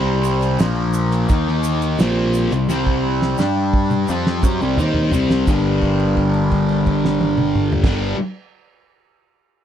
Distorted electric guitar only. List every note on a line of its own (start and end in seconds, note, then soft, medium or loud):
0.00 0.59 C3 medium
0.00 0.60 G3 loud
0.00 0.60 C4 loud
0.61 1.29 A#2 medium
0.61 1.29 F3 medium
0.61 1.29 A#3 medium
1.29 1.98 D#3 medium
1.29 1.99 A#3 medium
1.29 1.99 D#4 loud
2.00 2.51 A#2 medium
2.00 2.51 F3 medium
2.00 2.51 A#3 loud
2.53 2.68 C3 medium
2.53 2.69 G3 medium
2.69 3.37 C3 medium
2.69 3.38 G3 loud
2.69 3.38 C4 loud
3.39 4.07 G3 medium
3.39 4.07 D4 medium
3.39 4.08 G4 medium
4.09 4.42 F3 medium
4.09 4.43 C4 medium
4.09 4.43 F4 medium
4.43 4.59 F#3 medium
4.43 4.60 C#4 medium
4.61 4.77 C3 medium
4.61 4.77 G3 loud
4.78 5.12 D#3 medium
4.78 5.12 A#3 medium
4.78 5.12 D#4 loud
5.12 5.46 C3 medium
5.12 5.46 G3 medium
5.12 5.46 C4 medium
5.46 7.82 G2 medium
5.46 7.84 D3 loud
5.50 7.86 G3 loud
7.83 8.14 G2 medium
7.83 8.15 D3 loud
7.83 8.16 G3 loud